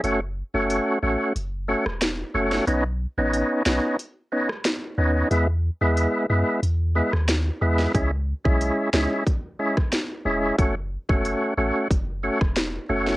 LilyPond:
<<
  \new Staff \with { instrumentName = "Tonewheel organ" } { \time 4/4 \key fis \dorian \tempo 4 = 91 <a cis' fis'>16 r8 <a cis' fis'>8. <a cis' fis'>8 r8 <a cis' fis'>16 r8. <a cis' fis'>8 | <b cis' dis'>16 r8 <b cis' dis'>8. <b cis' dis'>8 r8 <b cis' dis'>16 r8. <b cis' dis'>8 | <gis b e'>16 r8 <gis b e'>8. <gis b e'>8 r8 <gis b e'>16 r8. <gis b e'>8 | <gis cis' e'>16 r8 <gis cis' e'>8. <gis cis' e'>8 r8 <gis cis' e'>16 r8. <gis cis' e'>8 |
<a cis' fis'>16 r8 <a cis' fis'>8. <a cis' fis'>8 r8 <a cis' fis'>16 r8. <a cis' fis'>8 | }
  \new Staff \with { instrumentName = "Sub bass" } { \clef bass \time 4/4 \key fis \dorian fis,,8. fis,,8 r16 a,,16 r16 fis,,8. e,,8. fis,,8 | b,,8. a,,8 r16 b,,16 r4. r16 dis,8 | e,8. e,8 r16 fis,16 r16 e,8. dis,8. e,8 | cis,8. b,,8 r16 cis,16 r4. r16 e,,8 |
fis,,8. fis,,8 r16 a,,16 r16 fis,,8. e,,8. fis,,8 | }
  \new DrumStaff \with { instrumentName = "Drums" } \drummode { \time 4/4 hh4 hh4 hh8. ss16 <hh sn>8. sn16 | hh4 hh8 sn8 hh8. ss16 <hh sn>4 | hh4 hh4 hh8. ss16 <hh sn>8. sn16 | <hh bd>8. bd16 hh8 sn8 <hh bd>8. <bd ss>16 <hh sn>4 |
<hh bd>8. bd16 hh4 <hh bd>8. <bd ss>16 <hh sn>8. sn16 | }
>>